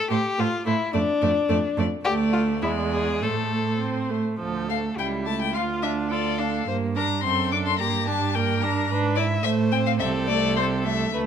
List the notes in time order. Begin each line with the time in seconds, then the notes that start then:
0.10 A2 A3 G4 C5
0.38 A2 A3 F4 C5
0.66 A2 A3 E4 C5
0.93 F2 A3 D4 D5
1.21 F2 A3 D5
1.49 F2 A3 D5
1.77 F2 A3 D5
2.05 D2 A3 G4 D5
2.33 F4
2.62 E2 G#3 E4 D5
2.92 G#4
3.21 A2 A3 A4 C5
3.80 C4
4.10 A3
4.39 D2 F3 A4
4.68 A3 F5
4.97 C#2 G3 E4 G5
5.26 A3 A5
5.42 G5
5.54 D2 F4 F5
5.83 D4 E5
6.10 F4 A4 D5
6.38 D4 F5
6.68 G2 A#3 C5
6.96 D4 A#4 A#5
7.23 F#2 C4 A4 C6
7.52 D4 D6
7.66 C6
7.79 G2 A#3 G4 A#5
8.07 D4 A5
8.35 A#3 A#4 G5
8.62 D4 A#5
8.90 G#2 D4 B4
9.16 E4 D5 E5
9.43 A2 A3 C5 E5
9.72 C4 G5
9.86 F5
9.99 C2 C4 A4 E5
10.27 A3 D5
10.56 C4 C5
10.84 A3 E5
11.12 D2 A3 B4